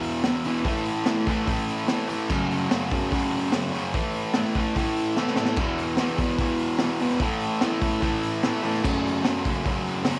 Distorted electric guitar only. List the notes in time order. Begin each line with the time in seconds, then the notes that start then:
Already playing: E2 B2 E3
0.23 E2 B2 E3
0.45 E2 B2 E3
0.65 A2 E3 A3
1.05 A2 E3 A3
1.27 A2 E3 A3
1.47 A2 E3 A3
1.87 A2 E3 A3
2.08 A2 E3 A3
2.29 F#2 C#3 F#3
2.69 F#2 C#3 F#3
2.91 F#2 C#3 F#3
3.12 F#2 C#3 F#3
3.52 F#2 C#3 F#3
3.72 F#2 C#3 F#3
3.94 A2 E3 A3
4.35 A2 E3 A3
4.56 A2 E3 A3
4.76 A2 E3 A3
5.17 A2 E3 A3
5.36 A2 E3 A3
5.57 E2 B2 E3
5.98 E2 B2 E3
6.17 E2 B2 E3
6.39 E2 B2 E3
6.81 E2 B2 E3
7.01 E2 B2 E3
7.20 A2 E3 A3
7.61 A2 E3 A3
7.81 A2 E3 A3
8.01 A2 E3 A3
8.44 A2 E3 A3
8.63 A2 E3 A3
8.83 F#2 C#3 F#3
9.24 F#2 C#3 F#3
9.46 F#2 C#3 F#3
9.65 F#2 C#3 F#3
10.06 F#2 C#3 F#3